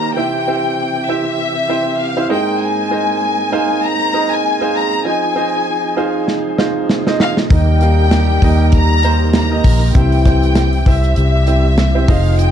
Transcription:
Already playing: tonewheel organ D#3 D#4 G4 A#4, grand piano A#3 D#4 G4 A#4 C5 D#5 F5, violin section A#5
0.15 tonewheel organ C3 E3 C4, grand piano C3 C4 E4 G4 C5 E5, violin section G5
0.47 grand piano C4 E4 G4 C5 E5
1.08 grand piano C4 E4 G4 C5 E5, violin section E5
1.69 grand piano C4 E4 G4 C5 G5
2.01 violin section F5
2.16 grand piano C4 E4 G4 C5 E5
2.29 grand piano G#2 D#4 G#4 A#4 C5 D#5, tonewheel organ G#3 A#3, violin section G5
2.62 violin section G#5
2.91 grand piano D#4 G#4 A#4 C5 D#5
3.52 grand piano D#4 G#4 A#4 C5 F5
3.84 violin section A#5
4.13 grand piano D#4 G#4 A#4 C5 D#5
4.31 violin section G#5
4.60 grand piano D#4 G#4 A#4 C5 F5
4.76 violin section A#5
5.04 tonewheel organ F3 D#4 G#4, grand piano D#4 F4 G#4 C5 D#5, violin section G#5
5.35 grand piano D#4 F4 G#4 C5 D#5
5.96 grand piano D#4 F4 G#4 C5 F5
6.28 snare
6.58 grand piano D#4 F4 G#4 C5 F5, snare
6.89 snare
7.06 grand piano D#4 F4 G#4 C5 D#5, snare
7.20 violin section F5, snare
7.37 snare
7.49 fingered electric bass D#2, tonewheel organ D#3 G4 A#4, grand piano D#3 A#3 D#4 G4 A#4 D#5, french horn section G3 G4, violin section G5, kick, open hi-hat
7.81 grand piano A#3 D#4 G4 A#4 F5, hi-hat pedal, open hi-hat
8.11 snare, hi-hat pedal, open hi-hat
8.42 fingered electric bass D#2, grand piano A#3 D#4 G4 A#4 D#5, kick, hi-hat pedal, open hi-hat
8.72 violin section A#5, kick, hi-hat pedal, open hi-hat
9.03 grand piano A#3 D#4 G4 A#4 C5, hi-hat pedal, open hi-hat
9.33 violin section A#5, snare, hi-hat pedal, open hi-hat
9.50 grand piano A#3 D#4 G4 A#4 D#5
9.64 fingered electric bass A#1, kick, hi-hat pedal, open hi-hat
9.94 fingered electric bass C2, tonewheel organ C3 C4 E4, grand piano C3 C4 E4 G4 C5 E5, french horn section E3 E4, violin section G5, kick, hi-hat pedal, open hi-hat
10.12 open hi-hat
10.25 grand piano C4 E4 G4 C5 G5, kick, snare, hi-hat pedal, open hi-hat
10.43 hi-hat pedal
10.55 snare, hi-hat pedal, open hi-hat
10.73 open hi-hat
10.86 fingered electric bass C2, grand piano C4 E4 G4 C5 E5, violin section E5, kick, hi-hat pedal, open hi-hat
11.03 hi-hat pedal
11.16 fingered electric bass C2, french horn section G3 G4, hi-hat pedal, open hi-hat
11.47 grand piano C4 E4 G4 C5 E5, hi-hat pedal, open hi-hat
11.78 snare, hi-hat pedal, open hi-hat
11.94 grand piano C4 E4 G4 C5 E5
12.08 fingered electric bass F1, tonewheel organ F3 D#4 G#4, french horn section F3 F4, grand piano D#4 F4 G#4 C5 D#5, violin section F5, kick, hi-hat pedal, open hi-hat
12.39 violin section G5, hi-hat pedal, open hi-hat

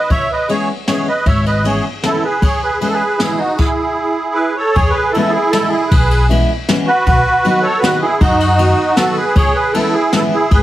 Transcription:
0.10 upright bass C#2, accordion C#5 E5, kick, ride
0.32 accordion B4 D#5
0.49 steel-string acoustic guitar E3 G#3 B3 C#4, accordion G#4 C#5, ride
0.88 steel-string acoustic guitar E3 G#3 B3 C#4, accordion G#4 C#5, snare, ride
1.09 accordion B4 D#5
1.26 upright bass G#1, accordion C#5 E5, kick, ride
1.46 accordion B4 D#5, ride
1.64 steel-string acoustic guitar E3 G#3 B3 C#4, accordion G#4 C#5, ride
2.02 steel-string acoustic guitar E3 G#3 B3 C#4, accordion E4 A4, snare, ride
2.24 accordion G#4 B4
2.41 upright bass E2, accordion G#4 C#5, kick, ride
2.63 accordion G#4 B4
2.78 steel-string acoustic guitar E3 G#3 B3 C#4, accordion G#4 B4, ride
2.87 accordion A4
2.93 accordion G#4 B4
3.18 steel-string acoustic guitar E3 G#3 C#4, accordion E4 G#4, snare, ride
3.22 steel-string acoustic guitar B3
3.37 accordion D#4 F#4
3.56 accordion E4 G#4, kick, crash
4.35 accordion G#4 B4
4.56 accordion A4 C#5
4.72 accordion G#4 C#5, kick, ride
4.76 upright bass E2
4.90 accordion G#4 B4
5.11 accordion E4 A4, ride
5.15 steel-string acoustic guitar E3 G#3 B3 C#4 E4
5.29 accordion E4 G#4
5.51 steel-string acoustic guitar E3 G#3 B3 C#4, accordion E4 A4, snare, ride
5.55 steel-string acoustic guitar E4
5.69 accordion E4 G#4
5.88 upright bass B1, accordion G#4 B4, kick, ride
6.11 ride
6.29 steel-string acoustic guitar E3 G#3 B3 C#4 E4, ride
6.68 steel-string acoustic guitar E3 G#3 B3 C#4 E4, snare, ride
6.87 accordion F#4 B4
7.07 upright bass B1, kick, ride
7.45 steel-string acoustic guitar D#3 F#3 B3 D#4 F#4, ride
7.62 accordion A4 C#5
7.79 steel-string acoustic guitar D#3 F#3 B3, accordion F#4 B4
7.84 steel-string acoustic guitar D#4 F#4, snare, ride
8.01 accordion E4 G#4
8.20 upright bass F#2, accordion D#4 F#4, kick, ride
8.40 ride
8.58 steel-string acoustic guitar D#3 F#3 B3 D#4 F#4, ride
8.96 steel-string acoustic guitar D#3 F#3 B3 D#4 F#4, accordion F#4 A4, snare, ride
9.17 accordion G#4 B4
9.35 upright bass C#2, accordion G#4 C#5, kick, ride
9.54 accordion G#4 B4
9.73 steel-string acoustic guitar E3 G#3 B3 C#4 E4, accordion E4 A4, ride
9.93 accordion E4 G#4
10.13 steel-string acoustic guitar E3 G#3 B3 C#4 E4, accordion E4 A4, snare, ride
10.33 accordion E4 G#4
10.51 upright bass G#1, accordion G#4 B4, kick, ride

